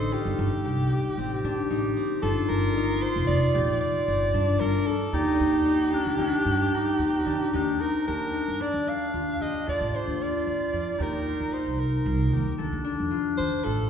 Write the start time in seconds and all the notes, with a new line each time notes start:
Already playing: A1 D3 C4 D#4 A4 C5
0.12 F4 G4
0.25 G1
0.39 G1 D#4
0.65 C2 G4
0.92 G4
1.17 A1 C4
1.44 A2 D4
1.70 A1 D#4
1.97 C4
2.22 G1 D4 F4 A4
2.49 G1 A#4
2.76 D#4
3.02 F4 C5
3.16 F1
3.27 F1 D#4 D5
3.54 A#1 G4
3.80 D5
4.08 G1 C4
4.34 G2 D4
4.60 G1 F4 A#4
4.87 D4 A4
5.13 D#2 D#4 G4 D5
5.40 D#2
5.66 D#4
5.92 D4 F4
6.06 D2
6.18 D2 D4 D#4
6.45 G2 G4
6.74 D#4
6.99 D#2 C4
7.26 D#3 D4
7.53 D#2 D4 D#4 G4
7.80 C4 D#4 A#4
8.07 D#2 D4 G4 A#4
8.34 D#4
8.48 G2
8.60 D4 D5
8.73 D#2
8.89 F5
9.14 D#2 F4
9.40 D#2 G4 D#5
9.67 D#2 F4 A4 D5
9.81 A1
9.94 D4 C5
10.07 D#2
10.20 F4 D5
10.47 D#2
10.73 F2 F4
10.99 D#2 D#4 G4 A#4
11.26 F4
11.40 D#2
11.53 D#4 C5
11.67 C2
11.79 A#4
12.06 C2 F4
12.33 D#2 G4
12.58 D#2 D4 A4
12.73 D#2
12.84 D4
12.99 F2
13.11 F4
13.37 D#3 C5
13.64 A1 F4 A4